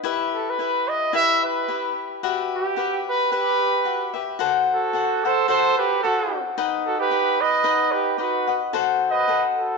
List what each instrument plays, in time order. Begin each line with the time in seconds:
0.03 cavaquinho E4 G4 B4 E5
0.34 trumpet A4
0.49 trumpet B4
0.59 cavaquinho E4 G4 B4 E5
0.88 trumpet D#5
1.13 cavaquinho E4 G4 B4 E5, trumpet E5
1.44 trumpet B4
1.68 cavaquinho E4 G4 B4 E5
2.23 cavaquinho F#4 G4 B4 E5
2.55 trumpet G4
2.76 cavaquinho F#4 G4 B4 E5
3.09 trumpet B4
3.31 trumpet G4 B4, cavaquinho G4 B4 E5
3.85 cavaquinho F#4 G4 B4 E5
4.14 cavaquinho G4 B4 E5
4.39 cavaquinho F#4 A4 C5 F#5
4.73 trumpet F#4 A4
4.93 cavaquinho F#4 A4 C5 F#5
5.24 trumpet A4 C5, cavaquinho A4 C5 F#5
5.48 cavaquinho F#4 A4 C5 F#5, trumpet A4 C5
5.78 trumpet G4 B4
6.03 cavaquinho F#4 A4 C5 F#5, trumpet F#4 A4
6.58 cavaquinho D#4 B4 D#5 F#5
6.87 trumpet F#4 A4
6.99 trumpet G4 B4
7.11 cavaquinho D#4 B4 D#5 F#5
7.41 trumpet B4 D#5
7.64 cavaquinho D#4 B4 D#5 F#5
7.92 trumpet G4 B4
8.18 cavaquinho D#4 B4 D#5 F#5, trumpet F#4 B4
8.47 cavaquinho B4 D#5 F#5
8.73 cavaquinho F#4 A4 C5 F#5
9.10 trumpet B4 D#5
9.28 cavaquinho F#4 A4 C5 F#5
9.57 trumpet A4
9.61 trumpet F#4